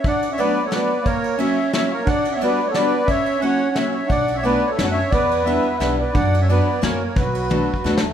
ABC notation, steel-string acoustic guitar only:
X:1
M:3/4
L:1/8
Q:"Swing" 1/4=177
K:Bm
V:1 name="Steel-string acoustic guitar"
z2 [F,A,B,DF] z [F,A,B,DF] z | z2 [F,^A,CEF] z [F,A,CEF] z | z2 [G,B,DFG] z [G,B,DFG] z | z2 [F,^A,CEF] z [F,A,CEF] z |
z2 [A,B,CDF] z [A,B,CDF] z | z2 [G,B,DEG] z [G,B,DEG] z | z2 [F,B,DFB] z [^A,CEF^A] z | z2 [A,B,DFA] z [A,B,DFA] z |]